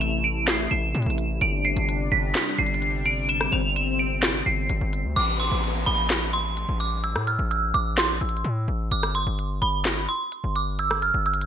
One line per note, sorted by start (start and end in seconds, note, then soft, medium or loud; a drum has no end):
0.00 0.67 A1 loud
0.00 1.37 C3 medium
0.00 1.38 A3 medium
0.00 1.37 E4 medium
0.00 0.23 E7 medium
0.00 closed hi-hat medium
0.24 0.46 D7 medium
0.47 0.70 C7 medium
0.47 snare loud
0.47 clap medium
0.47 closed hi-hat medium
0.71 0.94 A1 loud
0.71 1.37 E7 medium
0.95 1.06 A2 loud
0.95 closed hi-hat soft
1.02 1.40 A1 loud
1.02 closed hi-hat medium
1.10 closed hi-hat medium
1.18 closed hi-hat medium
1.41 1.75 G1 loud
1.41 5.13 C3 medium
1.41 5.13 G3 medium
1.41 3.27 D4 medium
1.41 1.64 D7 loud
1.41 closed hi-hat medium
1.65 1.87 C7 medium
1.65 closed hi-hat soft
1.77 2.10 G1 loud
1.77 closed hi-hat medium
1.89 closed hi-hat medium
2.12 2.34 G1 loud
2.12 2.56 B6 medium
2.35 snare loud
2.35 clap medium
2.35 closed hi-hat medium
2.58 3.49 G1 loud
2.58 3.03 C7 medium
2.58 closed hi-hat soft
2.66 closed hi-hat medium
2.74 closed hi-hat medium
2.82 closed hi-hat medium
3.06 3.28 D7 medium
3.06 closed hi-hat medium
3.29 5.15 C4 medium
3.29 3.51 E7 loud
3.29 closed hi-hat loud
3.41 cross-stick medium
3.52 4.42 G1 loud
3.52 3.74 F7 medium
3.52 closed hi-hat medium
3.76 3.98 E7 medium
3.76 closed hi-hat medium
3.99 4.43 D7 medium
4.22 snare loud
4.22 clap medium
4.22 closed hi-hat medium
4.46 4.69 G1 loud
4.46 5.12 C7 medium
4.69 4.81 G1 loud
4.69 closed hi-hat medium
4.81 5.06 G1 loud
4.93 closed hi-hat medium
5.05 5.16 D2 loud
5.16 5.50 A1 loud
5.16 5.39 D6 loud
5.16 closed hi-hat medium
5.16 crash loud
5.16 downlifter medium
5.40 5.62 C6 medium
5.40 closed hi-hat medium
5.51 5.85 A1 loud
5.64 closed hi-hat medium
5.86 6.65 A1 loud
5.86 6.31 B5 medium
5.86 closed hi-hat medium
6.10 snare loud
6.10 clap medium
6.10 closed hi-hat medium
6.33 6.77 C6 medium
6.33 closed hi-hat medium
6.57 closed hi-hat medium
6.69 7.17 A1 loud
6.80 7.02 D6 medium
6.80 closed hi-hat medium
7.04 7.26 E6 loud
7.04 closed hi-hat medium
7.16 7.38 A2 loud
7.16 cross-stick medium
7.27 7.49 F6 medium
7.27 closed hi-hat medium
7.39 7.73 A1 loud
7.51 7.73 E6 medium
7.51 closed hi-hat medium
7.74 8.19 A1 loud
7.74 7.96 D6 medium
7.74 closed hi-hat medium
7.97 8.20 C6 medium
7.97 snare loud
7.97 clap medium
7.97 closed hi-hat medium
8.21 8.44 A1 medium
8.21 8.87 E6 medium
8.21 closed hi-hat medium
8.29 closed hi-hat medium
8.37 closed hi-hat medium
8.44 8.67 A2 loud
8.44 closed hi-hat medium
8.68 8.90 A1 loud
8.91 9.25 G1 loud
8.91 9.14 D6 loud
8.91 closed hi-hat medium
9.03 cross-stick medium
9.15 9.37 C6 medium
9.15 closed hi-hat medium
9.27 9.60 G1 loud
9.39 closed hi-hat medium
9.62 10.07 G1 loud
9.62 10.06 B5 medium
9.62 closed hi-hat medium
9.85 snare loud
9.85 clap medium
9.85 closed hi-hat medium
10.09 10.53 C6 medium
10.09 closed hi-hat medium
10.32 closed hi-hat medium
10.44 11.11 G1 loud
10.56 10.78 D6 medium
10.56 closed hi-hat medium
10.79 11.01 E6 loud
10.79 closed hi-hat medium
10.91 cross-stick medium
11.02 11.24 F6 medium
11.02 closed hi-hat medium
11.14 11.46 G1 loud
11.26 11.46 E6 medium
11.26 closed hi-hat soft
11.34 closed hi-hat medium
11.41 closed hi-hat medium